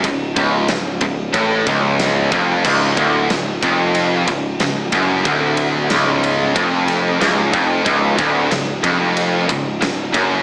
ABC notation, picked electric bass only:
X:1
M:4/4
L:1/8
Q:1/4=92
K:none
V:1 name="Picked electric bass" clef=bass
^C,,, C,,, C,,, C,,, A,,, C,,,2 ^E,,, | ^C,,, D,,, C,,, ^E,,,2 C,,, C,,, ^F,,, | D,,,2 ^C,,,2 ^E,,,2 C,,, E,,, | ^C,,, D,,, C,,, ^E,,,2 C,,, C,,, ^F,,, |]